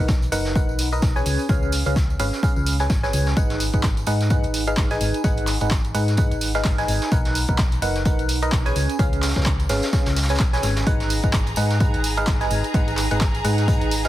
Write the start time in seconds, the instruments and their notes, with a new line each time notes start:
0.00 fm bass B1, fm electric piano D#4 A#4 B4 F#5
0.08 kick, snare, closed hi-hat, tambourine
0.22 closed hi-hat, tambourine
0.32 fm bass F#1, fm electric piano D#4 A#4 B4 F#5, closed hi-hat, open hi-hat, tambourine
0.45 snare, tambourine
0.55 fm electric piano D#4 A#4 B4 F#5, kick, closed hi-hat, tambourine
0.69 fm bass B1, tambourine
0.79 closed hi-hat, open hi-hat, tambourine
0.92 fm electric piano D#4 A#4 B4 D#5, tambourine
1.02 fm bass B1, kick, snare, closed hi-hat, tambourine
1.16 fm electric piano C#4 G#4 B4 G#5, snare, tambourine
1.26 fm bass C#2, closed hi-hat, open hi-hat, tambourine
1.39 tambourine
1.49 fm bass C#2, fm electric piano C#4 G#4 B4 F5, kick, closed hi-hat, tambourine
1.63 tambourine
1.72 closed hi-hat, open hi-hat, tambourine
1.86 fm bass C#2, fm electric piano C#4 G#4 B4 F5, closed hi-hat, tambourine
1.96 kick, snare, closed hi-hat, tambourine
2.10 tambourine
2.19 fm bass G#1, fm electric piano C#4 G#4 B4 F5, closed hi-hat, open hi-hat, tambourine
2.33 snare, tambourine
2.43 fm electric piano C#4 G#4 B4 F5, kick, closed hi-hat, tambourine
2.56 fm bass C#2, tambourine
2.66 closed hi-hat, open hi-hat, tambourine
2.79 fm electric piano C#4 G#4 B4 G#5, snare, tambourine
2.90 fm bass G#1, kick, snare, closed hi-hat, tambourine
3.03 fm electric piano C#4 G#4 B4 G#5, snare, tambourine
3.13 fm bass C#2, closed hi-hat, open hi-hat, tambourine
3.26 snare, tambourine
3.36 fm electric piano D#4 G#4 B4 F#5, kick, closed hi-hat, tambourine
3.50 snare, closed hi-hat, tambourine
3.60 closed hi-hat, open hi-hat, tambourine
3.73 fm bass G#1, fm electric piano D#4 G#4 B4 F#5, kick, closed hi-hat, tambourine
3.83 kick, snare, clap, closed hi-hat, tambourine
3.97 closed hi-hat, tambourine
4.06 fm bass G#2, fm electric piano D#4 G#4 B4 F#5, closed hi-hat, open hi-hat, tambourine
4.21 snare, closed hi-hat, tambourine
4.30 fm electric piano D#4 G#4 B4 F#5, kick, closed hi-hat, tambourine
4.43 fm bass G#1, closed hi-hat, tambourine
4.54 closed hi-hat, open hi-hat, tambourine
4.67 fm electric piano D#4 G#4 B4 F5, closed hi-hat, tambourine
4.77 fm bass G#1, kick, snare, clap, closed hi-hat, tambourine
4.91 fm electric piano D#4 G#4 B4 G#5, snare, closed hi-hat, tambourine
5.01 fm bass G#1, closed hi-hat, open hi-hat, tambourine
5.14 closed hi-hat, tambourine
5.24 fm bass G#1, fm electric piano D#4 G#4 B4 F#5, kick, closed hi-hat, tambourine
5.37 closed hi-hat, tambourine
5.47 clap, closed hi-hat, open hi-hat, tambourine
5.61 fm bass G#1, fm electric piano D#4 G#4 B4 F#5, closed hi-hat, tambourine
5.71 kick, snare, clap, closed hi-hat, tambourine
5.84 closed hi-hat, tambourine
5.94 fm bass G#2, fm electric piano D#4 G#4 B4 F#5, closed hi-hat, open hi-hat, tambourine
6.08 snare, closed hi-hat, tambourine
6.17 fm electric piano D#4 G#4 B4 F#5, kick, closed hi-hat, tambourine
6.31 fm bass G#1, closed hi-hat, tambourine
6.41 closed hi-hat, open hi-hat, tambourine
6.55 fm electric piano D#4 G#4 B4 F5, snare, closed hi-hat, tambourine
6.65 fm bass G#1, kick, snare, clap, closed hi-hat, tambourine
6.78 fm electric piano D#4 G#4 B4 G#5, snare, closed hi-hat, tambourine
6.88 fm bass G#1, closed hi-hat, open hi-hat, tambourine
7.02 snare, closed hi-hat, tambourine
7.12 fm bass B1, fm electric piano D#4 A#4 B4 F#5, kick, closed hi-hat, tambourine
7.25 snare, closed hi-hat, tambourine
7.35 closed hi-hat, open hi-hat, tambourine
7.49 fm bass B1, fm electric piano D#4 A#4 B4 F#5, kick, closed hi-hat, tambourine
7.58 kick, snare, clap, closed hi-hat, tambourine
7.72 closed hi-hat, tambourine
7.82 fm bass F#1, fm electric piano D#4 A#4 B4 F#5, closed hi-hat, open hi-hat, tambourine
7.95 snare, closed hi-hat, tambourine
8.05 fm electric piano D#4 A#4 B4 F#5, kick, closed hi-hat, tambourine
8.19 fm bass B1, closed hi-hat, tambourine
8.28 closed hi-hat, open hi-hat, tambourine
8.42 fm electric piano D#4 A#4 B4 D#5, closed hi-hat, tambourine
8.52 fm bass B1, kick, snare, clap, closed hi-hat, tambourine
8.65 fm electric piano C#4 G#4 B4 G#5, snare, closed hi-hat, tambourine
8.76 fm bass C#2, closed hi-hat, open hi-hat, tambourine
8.89 closed hi-hat, tambourine
8.99 fm bass C#2, fm electric piano C#4 G#4 B4 F5, kick, closed hi-hat, tambourine
9.13 closed hi-hat, tambourine
9.22 snare, clap, closed hi-hat, open hi-hat, tambourine
9.29 snare, closed hi-hat
9.36 fm bass C#2, fm electric piano C#4 G#4 B4 F5, kick, snare, closed hi-hat, tambourine
9.41 snare, closed hi-hat
9.46 kick, snare, clap, closed hi-hat, tambourine
9.60 closed hi-hat, tambourine
9.69 fm bass G#1, fm electric piano C#4 G#4 B4 F5, snare, closed hi-hat, open hi-hat, tambourine
9.82 snare, closed hi-hat, tambourine
9.93 fm electric piano C#4 G#4 B4 F5, kick, snare, closed hi-hat, tambourine
10.06 fm bass C#2, snare, closed hi-hat, tambourine
10.16 snare, closed hi-hat, open hi-hat, tambourine
10.23 snare, closed hi-hat
10.29 fm electric piano C#4 G#4 B4 G#5, snare, closed hi-hat, tambourine
10.35 snare, closed hi-hat
10.40 fm bass B1, kick, snare, clap, closed hi-hat, tambourine
10.53 fm electric piano C#4 G#4 B4 G#5, snare, closed hi-hat, tambourine
10.63 fm bass G#1, snare, closed hi-hat, open hi-hat, tambourine
10.76 snare, closed hi-hat, tambourine
10.87 fm bass G#1, fm electric piano D#4 G#4 B4 F#5, violin section G#4 A#5, kick, closed hi-hat, tambourine
11.00 snare, closed hi-hat, tambourine
11.10 closed hi-hat, open hi-hat, tambourine
11.24 fm bass G#1, fm electric piano D#4 G#4 B4 F#5, kick, closed hi-hat, tambourine
11.33 kick, snare, clap, closed hi-hat, tambourine
11.47 closed hi-hat, tambourine
11.56 fm bass G#2, fm electric piano D#4 G#4 B4 F#5, closed hi-hat, open hi-hat, tambourine
11.70 snare, closed hi-hat, tambourine
11.80 fm electric piano D#4 G#4 B4 F#5, kick, closed hi-hat, tambourine
11.94 fm bass G#1, closed hi-hat, tambourine
12.04 closed hi-hat, open hi-hat, tambourine
12.17 fm electric piano D#4 G#4 B4 F5, closed hi-hat, tambourine
12.27 fm bass G#1, kick, snare, clap, closed hi-hat, tambourine
12.40 fm electric piano D#4 G#4 B4 G#5, snare, closed hi-hat, tambourine
12.51 fm bass G#1, closed hi-hat, open hi-hat, tambourine
12.64 closed hi-hat, tambourine
12.74 fm bass G#1, fm electric piano D#4 G#4 B4 F#5, kick, closed hi-hat, tambourine
12.88 closed hi-hat, tambourine
12.97 clap, closed hi-hat, open hi-hat, tambourine
13.11 fm bass G#1, fm electric piano D#4 G#4 B4 F#5, closed hi-hat, tambourine
13.21 kick, snare, clap, closed hi-hat, tambourine
13.34 closed hi-hat, tambourine
13.45 fm bass G#2, fm electric piano D#4 G#4 B4 F#5, closed hi-hat, open hi-hat, tambourine
13.58 snare, closed hi-hat, tambourine
13.68 fm electric piano D#4 G#4 B4 F#5, kick, closed hi-hat, tambourine
13.81 fm bass G#1, closed hi-hat, tambourine
13.91 closed hi-hat, open hi-hat, tambourine
14.05 fm electric piano D#4 G#4 B4 F5, snare, closed hi-hat, tambourine